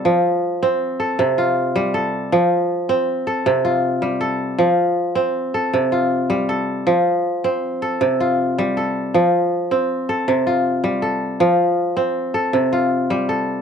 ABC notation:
X:1
M:12/8
L:1/8
Q:3/8=106
K:F
V:1 name="Kora"
A z4 A2 F3 A2- | A z4 A2 F3 A2- | A z4 A2 F3 A2- | A z4 A2 F3 A2- |
A z4 A2 F3 A2- | A z4 A2 F3 A2 |]
V:2 name="Kora" clef=bass
F,2 z C2 z C,2 z G,2 z | F,2 z C2 z C,2 z G,2 z | F,2 z C2 z C,2 z G,2 z | F,2 z C2 z C,2 z G,2 z |
F,2 z C2 z C,2 z G,2 z | F,2 z C2 z C,2 z G,2 z |]